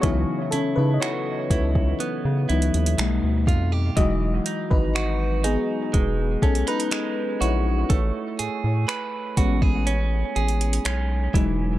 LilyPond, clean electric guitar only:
\new Staff \with { instrumentName = "Clean electric guitar" } { \time 4/4 \key a \lydian \tempo 4 = 61 cis8 e'8 fis'8 e'8 b8 e'8 b,8 f'16 g'16 | e8 dis'8 fis'8 dis'8 gis8 cis'16 dis'16 gis8 fis'8 | a8 gis'8 b'8 fis'16 gis'16 cis'8 gis'8 cis'8 e8 | }